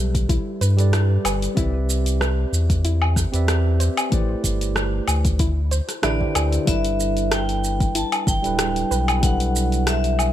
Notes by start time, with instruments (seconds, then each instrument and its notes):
Already playing: sub bass B1, tine electric piano G3 G4 A4 B4 D5 E5
0.15 kick, open hi-hat, shaker
0.29 synth arpeggio sound E4, kick, open hi-hat, shaker
0.61 sub bass G2, synth arpeggio sound B4, open hi-hat, shaker
0.76 tine electric piano G3 G4 A4 B4 D5, open hi-hat, shaker
0.93 synth arpeggio sound E4, cross-stick, open hi-hat, shaker
1.25 sub bass G1, synth arpeggio sound B4, open hi-hat, low woodblock, shaker
1.42 open hi-hat, shaker
1.55 sub bass C2, tine electric piano C4 G4 B4 D5, synth arpeggio sound E4, kick, open hi-hat, shaker
1.59 tine electric piano E5
1.90 shaker
2.06 open hi-hat, shaker
2.21 synth arpeggio sound B4, cross-stick, shaker
2.52 sub bass E2, shaker
2.70 kick, open hi-hat, shaker
2.85 synth arpeggio sound E4, open hi-hat, shaker
3.02 low woodblock
3.16 kick, cross-stick, shaker
3.32 sub bass E2, tine electric piano C4 G4 B4 D5 E5, open hi-hat, shaker
3.48 cross-stick, open hi-hat, shaker
3.80 synth arpeggio sound C5, open hi-hat, shaker
3.97 open hi-hat, low woodblock, shaker
4.10 sub bass A1, tine electric piano A3 E4 G4 B4 C5 D5, kick, open hi-hat, shaker
4.44 sub bass G1, kick, open hi-hat, shaker
4.61 open hi-hat, shaker
4.76 cross-stick, shaker
5.08 sub bass D2, open hi-hat, low woodblock, shaker
5.25 kick, open hi-hat, shaker
5.39 synth arpeggio sound E4, kick, open hi-hat, shaker
5.71 synth arpeggio sound C5, open hi-hat, shaker
5.89 cross-stick, open hi-hat, shaker
6.02 sub bass A1, tine electric piano D3 D4 E4 G4 B4, vibraphone D5, synth arpeggio sound E5, cross-stick, open hi-hat, shaker
6.20 tine electric piano D3 D4 E4 G4 C5, kick
6.35 sub bass D2, synth arpeggio sound A4, open hi-hat, low woodblock, shaker
6.53 open hi-hat, shaker
6.65 sub bass G1, tine electric piano G3 D4 E4 A4 B4, synth arpeggio sound E4, vibraphone E5, kick, open hi-hat, shaker
6.85 open hi-hat, shaker
7.00 shaker
7.17 open hi-hat, shaker
7.31 synth arpeggio sound A4, vibraphone G5, cross-stick, open hi-hat, shaker
7.49 open hi-hat, shaker
7.64 shaker
7.80 kick, open hi-hat, shaker
7.95 synth arpeggio sound E4, vibraphone A5, open hi-hat, shaker
8.12 open hi-hat, low woodblock, shaker
8.27 sub bass G1, vibraphone G5, kick, shaker
8.42 sub bass D1, tine electric piano G3 D4 E4 A4, open hi-hat, shaker
8.46 tine electric piano B4
8.59 cross-stick, open hi-hat, shaker
8.76 open hi-hat, shaker
8.91 sub bass B1, synth arpeggio sound B4, shaker
9.08 open hi-hat, low woodblock, shaker
9.21 tine electric piano G3 D4 E4 A4 B4, vibraphone F#5, kick, open hi-hat, shaker
9.40 open hi-hat, shaker
9.56 shaker
9.72 open hi-hat, shaker
9.87 vibraphone E5, cross-stick, open hi-hat, shaker
10.04 open hi-hat, shaker
10.19 low woodblock, shaker